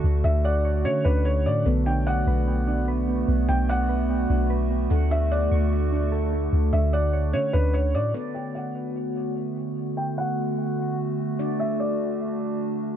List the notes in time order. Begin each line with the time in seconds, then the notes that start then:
Already playing: D3 A3 D4 F#4 A4 C#6
0.04 D2
0.24 D2 D4 E5
0.45 D5 F#5
0.65 C#5
0.85 D3 C#4 C#5
1.05 D2 D4 B4
1.25 C#5
1.46 A2 C#4 D5
1.66 B1 B3 F#4 A4
1.86 D4 G5
2.07 D5 F#5
2.27 B1 B4
2.47 B3
2.67 D4
2.88 B4
3.08 B3
3.28 B1 B3
3.49 B1 D4 G5
3.69 D5 F#5
3.89 B4
4.10 B3
4.30 B1 D4
4.50 B4
4.71 B3
4.90 D2 D3 A3 D4 A4 F#5
5.11 D4 E5
5.31 D5 F#5
5.51 D2 C#6
5.92 D4
6.12 A4
6.33 A3
6.53 D2
6.73 D2 D4 E5
6.93 D5 F#5
7.13 C#5
7.33 D3 C#4 C#5
7.53 D2 D4 B4
7.74 C#5
7.94 A2 C#4 D5
8.14 D3 A3 B3 F#4 A4 D5
8.34 G5
8.55 F#5
9.97 G5
10.18 F#5
11.39 D4 F#4 D5
11.60 E5
11.80 D5